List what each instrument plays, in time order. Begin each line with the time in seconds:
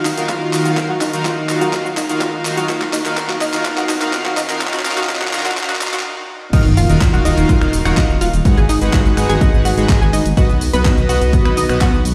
Already playing: riser
0.05 synth arpeggio sound D#4, clap, open hi-hat, shaker
0.17 supersaw synth D#3 D#4 F4 F#4 A#4 F5, closed hi-hat, shaker
0.29 synth arpeggio sound F4, kick, clap, closed hi-hat, shaker
0.53 supersaw synth D#3 D#4 F4 F#4 A#4 F5, clap, open hi-hat, shaker
0.65 synth arpeggio sound F#4, closed hi-hat, shaker
0.77 supersaw synth D#3 D#4 F4 F#4 A#4 F5, kick, clap, closed hi-hat, shaker
0.89 synth arpeggio sound F#4
1.01 synth arpeggio sound D#4, clap, open hi-hat, shaker
1.13 supersaw synth D#3 D#4 F4 F#4 A#4 F5, closed hi-hat, shaker
1.25 synth arpeggio sound F4, kick, clap, closed hi-hat, shaker
1.49 supersaw synth D#3 D#4 F4 F#4 A#4 F5, clap, open hi-hat, shaker
1.61 synth arpeggio sound F#4, closed hi-hat, shaker
1.73 supersaw synth D#4 F4 F#4 A#4 F5, kick, clap, closed hi-hat, shaker
1.85 synth arpeggio sound F#4, shaker
1.97 synth arpeggio sound D#4, clap, open hi-hat, shaker
2.09 supersaw synth D#3 D#4 F4 F#4 A#4 F5, closed hi-hat, shaker
2.21 synth arpeggio sound F4, kick, clap, closed hi-hat, shaker
2.45 supersaw synth D#3 D#4 F4 F#4 A#4 F5, clap, open hi-hat, shaker
2.57 synth arpeggio sound F#4, closed hi-hat, shaker
2.69 supersaw synth D#3 D#4 F4 F#4 A#4 F5, kick, clap, closed hi-hat, shaker
2.81 synth arpeggio sound F#4, clap
2.93 synth arpeggio sound D#4, clap, open hi-hat, shaker
3.05 supersaw synth D#3 D#4 F4 F#4 A#4 F5, clap, closed hi-hat, shaker
3.17 supersaw synth D#3 D#4 F4 F#4 A#4 F5, kick, clap, closed hi-hat, shaker
3.29 synth arpeggio sound F#4, clap
3.41 synth arpeggio sound D#4, clap, open hi-hat, shaker
3.53 supersaw synth D#3 D#4 F4 F#4 A#4 F5, clap, closed hi-hat, shaker
3.65 supersaw synth D#4 F4 F#4 A#4 F5, kick, clap, closed hi-hat, shaker
3.77 synth arpeggio sound F#4, clap, shaker
3.89 synth arpeggio sound D#4, clap, open hi-hat, shaker
4.01 supersaw synth D#3 D#4 F4 F#4 A#4 F5, clap, closed hi-hat, shaker
4.13 supersaw synth D#3 D#4 F4 F#4 A#4 F5, kick, clap, closed hi-hat, shaker
4.25 synth arpeggio sound F#4, clap
4.37 synth arpeggio sound D#4, clap, open hi-hat, shaker
4.49 supersaw synth D#3 D#4 F4 F#4 A#4 F5, clap, closed hi-hat, shaker
4.61 supersaw synth D#3 D#4 F4 F#4 A#4 F5, kick, clap, closed hi-hat, shaker
4.67 clap
4.73 synth arpeggio sound F#4, clap, shaker
4.79 clap
4.85 supersaw synth D#3 D#4 F4 F#4 A#4 F5, clap, open hi-hat, shaker
4.91 clap
4.97 synth arpeggio sound F#4, clap, closed hi-hat, shaker
5.03 clap
5.09 supersaw synth D#3 D#4 F4 F#4 A#4 F5, kick, clap, closed hi-hat, shaker
5.15 clap
5.21 synth arpeggio sound F#4, clap
5.27 clap
5.33 supersaw synth D#3 D#4 F4 F#4 A#4 F5, clap, open hi-hat, shaker
5.39 clap
5.45 synth arpeggio sound F#4, clap, closed hi-hat, shaker
5.51 clap
5.57 supersaw synth D#3 D#4 F4 F#4 A#4 F5, kick, clap, closed hi-hat, shaker
5.63 clap
5.69 synth arpeggio sound F#4, clap, shaker
5.75 clap
5.81 supersaw synth D#3 D#4 F4 F#4 A#4 F5, kick, clap, open hi-hat, shaker
5.87 clap
5.93 synth arpeggio sound F#4, clap, closed hi-hat, shaker
5.99 clap
6.29 high tom
6.42 mid tom
6.53 supersaw synth D#3 D#4 F4 F#4 A#4 F5, synth arpeggio sound D#4 D#5, kick, closed hi-hat, crash, sub drop, shaker
6.66 detuned saw bass D#1, closed hi-hat, shaker
6.77 detuned saw bass D#1, synth arpeggio sound F4 F5, open hi-hat, shaker
6.89 detuned saw bass D#1, supersaw synth D#3 D#4 F4 F#4 A#4 F5, closed hi-hat, shaker
7.01 kick, clap, closed hi-hat, shaker
7.13 detuned saw bass D#1, synth arpeggio sound F#4 F#5, closed hi-hat, shaker
7.25 detuned saw bass D#1, supersaw synth D#3 D#4 F4 F#4 A#4 F5, synth arpeggio sound D#4 D#5, open hi-hat, shaker
7.38 detuned saw bass D#1, closed hi-hat, shaker
7.49 synth arpeggio sound F4 F5, kick, closed hi-hat, shaker
7.62 detuned saw bass D#1, finger snap, shaker
7.73 detuned saw bass D#1, open hi-hat, shaker
7.85 detuned saw bass D#1, supersaw synth D#3 D#4 F4 F#4 A#4 F5, synth arpeggio sound F#4 F#5, finger snap, closed hi-hat, shaker
7.97 supersaw synth D#3 D#4 F4 F#4 A#4 F#5, synth arpeggio sound D#4 D#5, kick, clap, closed hi-hat, shaker
8.10 detuned saw bass D#1, shaker
8.21 detuned saw bass D#1, synth arpeggio sound F4 F5, open hi-hat, shaker
8.33 detuned saw bass D#1, closed hi-hat, shaker
8.45 supersaw synth G#3 D#4 F#4 G#4 B4 F#5, kick, closed hi-hat, shaker
8.57 detuned saw bass G#1, synth arpeggio sound G#4 G#5, closed hi-hat, shaker
8.69 detuned saw bass G#1, synth arpeggio sound D#4 D#5, open hi-hat, shaker
8.81 detuned saw bass G#1, supersaw synth G#3 D#4 F#4 G#4 B4 F#5, closed hi-hat, shaker
8.93 synth arpeggio sound F#4 F#5, kick, clap, closed hi-hat, shaker
9.05 detuned saw bass G#1, closed hi-hat, shaker
9.17 detuned saw bass G#1, supersaw synth G#3 D#4 F#4 G#4 B4 F#5, finger snap, open hi-hat, shaker
9.29 detuned saw bass G#1, synth arpeggio sound G#4 G#5, closed hi-hat, shaker
9.41 synth arpeggio sound D#4 D#5, kick, closed hi-hat, shaker
9.54 detuned saw bass G#1, shaker
9.65 detuned saw bass G#1, synth arpeggio sound F#4 F#5, open hi-hat, shaker
9.77 detuned saw bass G#1, supersaw synth G#3 D#4 F#4 G#4 B4 F#5, closed hi-hat, shaker
9.89 supersaw synth G#3 D#4 F#4 G#4 B4 G#5, kick, clap, closed hi-hat, shaker
10.01 detuned saw bass G#1, synth arpeggio sound G#4 G#5, shaker
10.13 detuned saw bass G#1, synth arpeggio sound D#4 D#5, open hi-hat, shaker
10.25 detuned saw bass G#1, closed hi-hat, shaker
10.37 supersaw synth B3 F#4 B4 D#5, synth arpeggio sound F#4 F#5, kick, closed hi-hat, shaker
10.49 detuned saw bass B1, closed hi-hat, shaker
10.61 detuned saw bass B1, open hi-hat, shaker
10.73 detuned saw bass B1, supersaw synth B3 F#4 B4 D#5, synth arpeggio sound B4 B5, closed hi-hat, shaker
10.85 synth arpeggio sound D#4 D#5, kick, clap, closed hi-hat, shaker
10.97 detuned saw bass B1, closed hi-hat, shaker
11.09 detuned saw bass B1, supersaw synth B3 F#4 B4 D#5, synth arpeggio sound F#4 F#5, open hi-hat, shaker
11.21 detuned saw bass B1, closed hi-hat, shaker
11.33 kick, closed hi-hat, shaker
11.45 detuned saw bass B1, synth arpeggio sound B4 B5, finger snap, shaker
11.57 detuned saw bass B1, synth arpeggio sound D#4 D#5, open hi-hat, shaker
11.69 detuned saw bass B1, supersaw synth B3 F#4 B4 D#5, finger snap, closed hi-hat, shaker
11.81 supersaw synth B3 F#4 B4, synth arpeggio sound F#4 F#5, kick, clap, closed hi-hat, shaker
11.93 detuned saw bass B1, shaker
12.05 detuned saw bass B1, open hi-hat, shaker